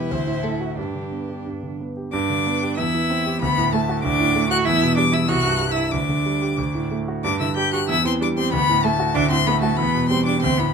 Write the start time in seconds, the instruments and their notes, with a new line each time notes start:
Already playing: grand piano E2 B2 G3 G4, cello E4, violin B4
0.11 grand piano D2, violin C5
0.27 grand piano A2
0.43 grand piano A3, violin A4
0.61 grand piano F#4, violin F#4
0.77 grand piano G2, cello D4, violin G4
0.95 grand piano D3
1.11 grand piano B3
1.29 grand piano G4
1.46 grand piano G2
1.63 grand piano D3
1.80 grand piano B3
1.97 grand piano G4
2.12 grand piano G2, cello D4, violin D6
2.30 grand piano D3
2.46 grand piano B3
2.63 grand piano G4
2.77 grand piano E2, cello E4, violin E6
2.95 grand piano E3
3.10 grand piano C4
3.26 grand piano G4
3.41 grand piano D2, cello B3, violin B5
3.58 grand piano A2
3.73 cello A3, grand piano A3, violin A5
3.89 grand piano F#4
4.03 grand piano D2, cello D4, violin D6
4.20 grand piano A2
4.36 grand piano A3
4.49 cello F#4, grand piano F#4, violin F#6
4.65 grand piano E2, cello E4, violin E6
4.83 grand piano B2
4.96 grand piano G3, cello D4, violin D6
5.12 cello E4, grand piano E4, violin E6
5.27 grand piano C2, cello F#4, violin F#6
5.45 grand piano G2
5.61 grand piano G3
5.70 cello E4, violin E6
5.77 grand piano E4
5.92 grand piano D2, cello D4, violin D6
6.09 grand piano D3
6.26 grand piano G3
6.42 grand piano G4
6.58 grand piano D2
6.75 grand piano A2
6.91 grand piano A3
7.08 grand piano F#4
7.24 grand piano G2, cello D4, violin D6
7.40 grand piano D3, cello E4, violin E6
7.56 grand piano G3, cello G4, violin G6
7.73 cello F#4, grand piano G4, violin F#6
7.88 grand piano E2, cello E4, violin E6
8.04 grand piano E3, cello C4, violin C6
8.21 grand piano G3, cello D4, violin D6
8.36 cello C4, grand piano G4, violin C6
8.52 grand piano D2, cello B3, violin B5
8.69 grand piano A2
8.83 cello A3, grand piano A3, violin A5
9.00 grand piano F#4
9.14 grand piano D2, cello D4, violin D6
9.29 grand piano A2, cello C4, violin C6
9.46 grand piano A3, cello B3, violin B5
9.61 cello A3, grand piano F#4, violin A5
9.77 grand piano E2, cello B3, violin B5
9.95 grand piano B2
10.09 grand piano G3, cello C4, violin C6
10.26 cello D4, grand piano G4, violin D6
10.41 grand piano D2, cello C4, violin C6
10.58 grand piano A2, cello B3, violin B5